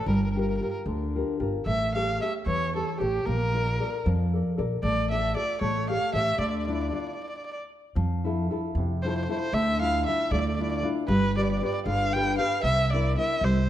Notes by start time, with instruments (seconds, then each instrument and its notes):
0.06 upright bass G1, nylon-string guitar G3, erhu A#4
0.15 erhu A#4
0.25 erhu A#4
0.32 nylon-string guitar F4 G4, erhu A#4
0.37 nylon-string guitar A#4, erhu A#4
0.50 erhu A#4
0.57 nylon-string guitar F4, erhu A#4
0.61 nylon-string guitar G4 A#4, erhu A#4
0.71 erhu A#4
0.86 upright bass D2, nylon-string guitar D3
1.15 nylon-string guitar F4 G4 A#4
1.40 upright bass G1, nylon-string guitar F4 G4 A#4
1.66 upright bass A1, nylon-string guitar A3, erhu E5
1.95 nylon-string guitar G4 A4 C#5, erhu F5
2.22 nylon-string guitar G4 A4 C#5, erhu E5
2.46 upright bass E2, nylon-string guitar E3, erhu C#5
2.75 nylon-string guitar G4 A4 C#5, erhu A4
3.00 upright bass A1, nylon-string guitar G4 A4 C#5, erhu G4
3.26 upright bass A#1, nylon-string guitar A#3, erhu A#4
3.54 nylon-string guitar F4 A#4 D5
3.80 nylon-string guitar A4 A#4 D5
4.06 upright bass F2, nylon-string guitar F3
4.33 nylon-string guitar A4 A#4 D5
4.57 upright bass A#1, nylon-string guitar A4 A#4 D5
4.83 upright bass A1, nylon-string guitar A3, erhu D5
5.11 nylon-string guitar F4 A4 D5, erhu E5
5.36 nylon-string guitar F4 A4 D5, erhu D5
5.61 upright bass A1, nylon-string guitar A3, erhu C#5
5.90 nylon-string guitar G4 A4 C#5, erhu F5
6.14 upright bass A1, nylon-string guitar G4 A4 C#5, erhu E5
6.38 upright bass D2, nylon-string guitar D3, erhu D5
6.50 erhu D5
6.58 erhu D5
6.66 nylon-string guitar D4 E4 F4, erhu D5
6.74 erhu D5
6.82 erhu D5
6.89 nylon-string guitar D4 E4 F4, erhu D5
6.96 erhu D5
7.01 erhu D5
7.08 erhu D5
7.15 erhu D5
7.23 erhu D5
7.29 erhu D5
7.37 erhu D5
7.46 erhu D5
7.53 erhu D5
7.95 upright bass F2, nylon-string guitar F3
8.24 nylon-string guitar E4 F4 A4
8.50 nylon-string guitar E4 F4 A4
8.75 upright bass F2, nylon-string guitar C3
9.03 nylon-string guitar E4 F4 A4, erhu C5
9.10 erhu C5
9.17 erhu C5
9.24 erhu C5
9.29 nylon-string guitar E4 F4 A4, erhu C5
9.39 erhu C5
9.53 upright bass D2, nylon-string guitar D3, erhu E5
9.81 nylon-string guitar D4 E4 F4, erhu F5
10.06 nylon-string guitar D4 E4 F4, erhu E5
10.31 upright bass D2, nylon-string guitar A3, erhu D5
10.40 erhu D5
10.49 erhu D5
10.56 nylon-string guitar D4 E4 F4, erhu D5
10.63 erhu D5
10.71 erhu D5
10.77 erhu D5
10.83 nylon-string guitar D4 E4 F4
11.08 upright bass G1, nylon-string guitar G3, erhu B4
11.37 nylon-string guitar F4 G4 B4, erhu D5
11.45 erhu D5
11.51 erhu D5
11.58 nylon-string guitar F4 G4, erhu D5
11.63 nylon-string guitar B4, erhu D5
11.73 erhu D5
11.86 upright bass G1, nylon-string guitar D3, erhu F5
12.14 nylon-string guitar F4 G4 B4, erhu G5
12.38 nylon-string guitar F4 G4 B4, erhu F5
12.63 upright bass C2, nylon-string guitar C3, erhu E5
12.93 nylon-string guitar C4 E4 A#4, erhu D5
13.18 nylon-string guitar C4 E4 A#4, erhu E5
13.41 upright bass C2, nylon-string guitar G3, erhu C5